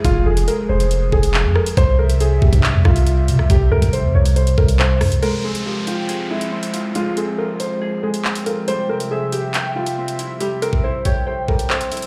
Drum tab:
HH |x-----x-x-----x-x-----x-------x-|x-----x-x-----x-------x-x---x---|x-----x-x-----x-x-x---x-----o-x-|x-----x-----x---x-----x---x-x---|
CP |------------------------x-------|----------------x---------------|------------------------x-------|--------------------------------|
SD |----------------------------r---|--------------------r---------r-|----------------------------r---|--------------------------------|
BD |o-------------------o-----------|o-----------o-o-----o-----------|o-----o-------------o-----------|--------------------------------|

HH |x---x-------x---------x---x-x---|x-----x-----x---x-----x---x-x---|x---x-------x---------x---x-xxx-|
CP |------------------------x-------|----------------x---------------|------------------------x-------|
SD |--------------------------------|--------------------------------|--------------------------------|
BD |--------------------------------|--------------------------------|------o-----o-------o-----------|